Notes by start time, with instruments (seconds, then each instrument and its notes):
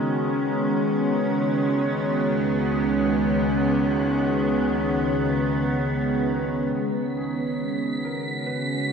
Already playing: synth drone C#3 C#4, ambient pad D#3 G#3 B3 C#4 F#4
1.50 ambient pad C#2
6.73 synth drone C#3 C#4, synth texture B6
7.17 felt piano G#4
7.35 ambient pad F#4
8.05 felt piano A#4
8.46 felt piano B4